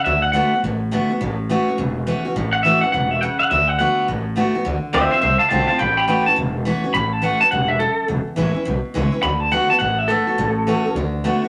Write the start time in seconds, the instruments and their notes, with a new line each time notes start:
0.04 upright bass D2, steel-string acoustic guitar D3, clean electric guitar E5
0.22 clean electric guitar F#5
0.32 steel-string acoustic guitar D3 A3 B3 F#4, clean electric guitar F#5
0.53 steel-string acoustic guitar B3 F#4, muted upright bass stroke
0.63 upright bass A1, steel-string acoustic guitar A2
0.91 steel-string acoustic guitar D3 A3 B3 F#4
1.10 steel-string acoustic guitar B3 F#4, muted upright bass stroke
1.21 upright bass A1, steel-string acoustic guitar A2
1.49 steel-string acoustic guitar E3 A3 C#4 F#4
1.68 steel-string acoustic guitar C#4 F#4, muted upright bass stroke
1.78 upright bass E1, steel-string acoustic guitar E2
2.07 steel-string acoustic guitar E3 A3 C#4 F#4
2.25 steel-string acoustic guitar C#4 F#4, muted upright bass stroke
2.36 upright bass A1, steel-string acoustic guitar A2
2.53 clean electric guitar F#5
2.63 steel-string acoustic guitar E3 A3 C#4 F#4, clean electric guitar E5
2.81 steel-string acoustic guitar C#4 F#4, clean electric guitar F#5, muted upright bass stroke
2.92 upright bass E1, steel-string acoustic guitar B2, clean electric guitar F#5
3.11 clean electric guitar E5
3.21 steel-string acoustic guitar C#3, clean electric guitar F#5
3.39 clean electric guitar F#5, muted upright bass stroke
3.50 upright bass D2, steel-string acoustic guitar D3, clean electric guitar E5
3.68 clean electric guitar F#5
3.79 steel-string acoustic guitar D3 A3 B3 F#4, clean electric guitar F#5
3.99 muted upright bass stroke
4.08 upright bass A1, steel-string acoustic guitar A2
4.36 steel-string acoustic guitar D3 A3 B3 F#4
4.55 steel-string acoustic guitar B3 F#4, muted upright bass stroke
4.65 upright bass D2, steel-string acoustic guitar D3
4.85 muted upright bass stroke
4.93 upright bass D2, steel-string acoustic guitar D3 A3 C4 F4, clean electric guitar C5 E5
5.11 steel-string acoustic guitar C4 F4, clean electric guitar C5 E5
5.21 upright bass C2, steel-string acoustic guitar A2, clean electric guitar C5 E5
5.38 clean electric guitar F5 A5, muted upright bass stroke
5.49 upright bass B1, steel-string acoustic guitar D3 A3 C4 F4, clean electric guitar F5 A5
5.67 steel-string acoustic guitar C4 F4, clean electric guitar F5 A5, muted upright bass stroke
5.78 upright bass A1, steel-string acoustic guitar A2, clean electric guitar G5 B5
5.97 clean electric guitar G5 B5
6.08 steel-string acoustic guitar E3 A3 C#4 F#4, clean electric guitar G5 B5
6.26 steel-string acoustic guitar C#4 F#4, clean electric guitar A5, muted upright bass stroke
6.36 upright bass E1, steel-string acoustic guitar E2
6.65 steel-string acoustic guitar E3 A3 C#4 F#4
6.84 steel-string acoustic guitar C#4 F#4, muted upright bass stroke
6.94 upright bass A1, steel-string acoustic guitar A2, clean electric guitar B5
7.13 clean electric guitar A5
7.22 steel-string acoustic guitar E3 A3 C#4 F#4, clean electric guitar F#5
7.41 steel-string acoustic guitar C#4 F#4, clean electric guitar A5, muted upright bass stroke
7.51 upright bass E1, steel-string acoustic guitar G2, clean electric guitar F#5
7.68 clean electric guitar E5
7.79 steel-string acoustic guitar F#2, clean electric guitar A4
7.99 muted upright bass stroke
8.08 upright bass E1, steel-string acoustic guitar E2
8.27 muted upright bass stroke
8.36 upright bass A1, steel-string acoustic guitar E3 G#3 C#4 E4
8.55 steel-string acoustic guitar C#4 E4, muted upright bass stroke
8.65 upright bass B1, steel-string acoustic guitar B2
8.85 muted upright bass stroke
8.94 upright bass C#2, steel-string acoustic guitar E3 G#3 C#4 E4
9.12 steel-string acoustic guitar C#4 E4
9.23 upright bass D2, steel-string acoustic guitar D3, clean electric guitar B5
9.40 clean electric guitar A5
9.51 steel-string acoustic guitar D3 A3 B3 F#4, clean electric guitar F#5
9.70 steel-string acoustic guitar B3 F#4, clean electric guitar A5, muted upright bass stroke
9.79 upright bass A1, steel-string acoustic guitar A2, clean electric guitar F#5
9.99 clean electric guitar E5
10.08 steel-string acoustic guitar D3 A3 B3 F#4, clean electric guitar A4
10.27 steel-string acoustic guitar B3 F#4, muted upright bass stroke
10.38 upright bass A1, steel-string acoustic guitar A2
10.67 steel-string acoustic guitar E3 A3 C#4 F#4
10.85 steel-string acoustic guitar C#4 F#4, muted upright bass stroke
10.95 upright bass D2, steel-string acoustic guitar D3
11.24 steel-string acoustic guitar D3 A3 B3 F#4
11.42 steel-string acoustic guitar B3 F#4, muted upright bass stroke